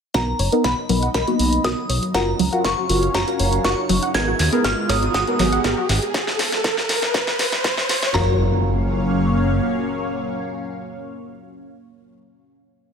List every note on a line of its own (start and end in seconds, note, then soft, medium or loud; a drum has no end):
0.14 0.34 B1 loud
0.14 4.10 F#3 medium
0.14 0.29 B3 medium
0.14 0.29 D#4 medium
0.14 2.12 D#4 medium
0.14 0.19 F#4 loud
0.14 0.29 A#4 loud
0.14 2.12 D#5 medium
0.14 0.66 A#5 medium
0.14 kick loud
0.14 snare soft
0.14 closed hi-hat medium
0.14 riser medium
0.39 0.49 F#1 medium
0.39 0.47 C#5 medium
0.39 open hi-hat medium
0.52 0.61 B3 medium
0.52 0.61 D#4 medium
0.52 0.61 A#4 loud
0.52 closed hi-hat soft
0.64 0.74 B1 medium
0.64 0.72 F#5 medium
0.64 1.11 B5 medium
0.64 kick loud
0.64 snare soft
0.64 closed hi-hat medium
0.89 1.09 B1 loud
0.89 0.94 F#3 loud
0.89 0.99 B3 medium
0.89 0.99 D#4 medium
0.89 0.99 A#4 medium
0.89 open hi-hat loud
1.03 1.09 F#5 medium
1.03 closed hi-hat medium
1.14 1.24 B1 medium
1.14 1.22 A#4 loud
1.14 1.66 B5 medium
1.14 kick loud
1.14 snare soft
1.14 closed hi-hat medium
1.27 1.62 A#3 medium
1.27 1.62 B3 medium
1.27 1.62 D#4 medium
1.27 1.34 F#4 medium
1.27 closed hi-hat soft
1.39 1.59 B1 medium
1.39 open hi-hat loud
1.53 closed hi-hat medium
1.64 1.74 B1 medium
1.64 1.74 B3 medium
1.64 1.74 D#4 medium
1.64 1.69 F#4 loud
1.64 1.74 A#4 medium
1.64 2.00 D#6 medium
1.64 kick loud
1.64 snare medium
1.64 closed hi-hat medium
1.89 1.99 B1 medium
1.89 1.97 C#5 medium
1.89 open hi-hat loud
2.03 closed hi-hat medium
2.14 2.34 F#1 loud
2.14 4.12 C#4 medium
2.14 2.29 F4 medium
2.14 2.29 F#4 medium
2.14 2.29 A#4 loud
2.14 4.12 C#5 medium
2.14 4.12 F5 medium
2.14 2.22 F#5 loud
2.14 2.61 A#5 medium
2.14 kick loud
2.14 snare medium
2.14 closed hi-hat medium
2.39 2.49 C#2 medium
2.39 2.44 F#3 loud
2.39 open hi-hat loud
2.53 2.61 F4 medium
2.53 2.61 F#4 medium
2.53 2.61 A#4 loud
2.53 2.59 F#5 medium
2.53 closed hi-hat soft
2.64 2.74 F#1 medium
2.64 2.72 A#4 loud
2.64 3.16 C#6 loud
2.64 3.16 C#6 medium
2.64 kick loud
2.64 snare medium
2.64 closed hi-hat medium
2.78 2.84 F#4 medium
2.89 3.09 F#1 loud
2.89 2.99 F4 medium
2.89 2.99 F#4 medium
2.89 2.99 A#4 medium
2.89 open hi-hat loud
3.03 closed hi-hat medium
3.14 3.24 F#1 medium
3.14 3.19 F#4 loud
3.14 3.66 A#5 medium
3.14 kick loud
3.14 snare medium
3.14 closed hi-hat medium
3.27 3.62 F4 medium
3.27 3.62 F#4 medium
3.27 3.62 A#4 medium
3.27 closed hi-hat soft
3.39 3.59 F#1 medium
3.39 3.47 C#5 medium
3.39 open hi-hat loud
3.53 closed hi-hat medium
3.64 3.75 F#1 medium
3.64 3.74 F4 medium
3.64 3.74 F#4 medium
3.64 3.74 A#4 medium
3.64 3.72 F#5 loud
3.64 4.00 C#6 loud
3.64 4.00 C#6 medium
3.64 kick loud
3.64 snare medium
3.64 closed hi-hat medium
3.89 3.99 F#1 medium
3.89 3.94 F#3 loud
3.89 open hi-hat loud
4.03 4.09 F#5 medium
4.03 closed hi-hat medium
4.14 4.34 G#1 loud
4.14 6.12 G#3 medium
4.14 4.29 B3 medium
4.14 6.12 B3 medium
4.14 6.12 D#4 medium
4.14 4.29 G#4 medium
4.14 6.12 G#4 medium
4.14 4.29 A#4 loud
4.14 6.12 A#4 medium
4.14 4.22 A#4 loud
4.14 4.61 G#6 loud
4.14 kick loud
4.14 snare medium
4.14 closed hi-hat medium
4.28 4.34 F#4 medium
4.39 4.49 D#2 loud
4.39 snare medium
4.39 open hi-hat loud
4.52 4.61 B3 loud
4.52 4.61 G#4 medium
4.52 4.61 A#4 loud
4.52 closed hi-hat soft
4.64 4.74 G#1 medium
4.64 4.69 F#4 loud
4.64 4.90 F6 loud
4.64 kick loud
4.64 snare medium
4.64 closed hi-hat medium
4.89 5.09 G#1 loud
4.89 4.99 B3 medium
4.89 4.99 G#4 medium
4.89 4.99 A#4 medium
4.89 4.97 C#5 medium
4.89 5.13 D#6 loud
4.89 snare medium
4.89 open hi-hat loud
5.03 closed hi-hat soft
5.14 5.24 G#1 medium
5.14 5.22 F#5 loud
5.14 5.85 D#6 medium
5.14 5.86 D#6 medium
5.14 kick loud
5.14 snare medium
5.14 closed hi-hat medium
5.27 5.61 B3 medium
5.27 5.62 G#4 medium
5.27 5.62 A#4 medium
5.27 closed hi-hat soft
5.39 5.59 G#1 medium
5.39 5.44 F#3 loud
5.39 snare medium
5.39 open hi-hat loud
5.52 5.59 F#5 medium
5.52 closed hi-hat medium
5.64 5.74 G#1 medium
5.64 5.74 B3 medium
5.64 5.74 G#4 medium
5.64 5.74 A#4 medium
5.64 5.72 A#4 loud
5.64 kick loud
5.64 snare medium
5.64 closed hi-hat medium
5.78 5.84 F#4 medium
5.89 5.99 G#1 medium
5.89 snare medium
5.89 open hi-hat loud
6.02 closed hi-hat medium
6.14 kick loud
6.14 snare medium
6.14 closed hi-hat medium
6.27 snare medium
6.39 snare loud
6.39 open hi-hat loud
6.52 snare medium
6.52 closed hi-hat soft
6.64 kick loud
6.64 snare loud
6.64 closed hi-hat medium
6.77 snare medium
6.89 snare loud
6.89 open hi-hat loud
7.02 snare medium
7.02 closed hi-hat medium
7.14 kick loud
7.14 snare loud
7.14 closed hi-hat medium
7.27 snare medium
7.27 closed hi-hat soft
7.39 snare loud
7.39 open hi-hat loud
7.52 snare medium
7.52 closed hi-hat medium
7.64 kick loud
7.64 snare loud
7.64 closed hi-hat medium
7.77 snare loud
7.89 snare loud
7.89 open hi-hat loud
8.03 snare loud
8.03 closed hi-hat medium
8.14 9.60 F#1 loud
8.14 12.14 F#3 medium
8.14 12.14 A#3 medium
8.14 12.14 C#4 medium
8.14 12.14 F4 medium
8.14 12.14 F#4 medium
8.14 8.38 F#4 loud
8.14 12.14 A#4 medium
8.14 12.14 C#5 medium
8.14 12.14 F5 medium
8.14 12.14 A#5 medium
8.14 snare loud
8.14 clap medium
8.14 impact medium